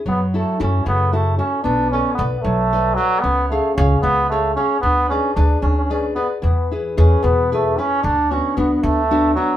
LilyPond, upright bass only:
\new Staff \with { instrumentName = "Upright bass" } { \clef bass \time 6/8 \key fis \minor \tempo 4. = 75 fis,4 fis,8 fis,4. | b,,4 b,,8 b,,4. | cis,4 cis,8 cis,4. | d,4 d,8 d,4. |
e,4 e,8 e,4. | d,4 d,8 d,4. | }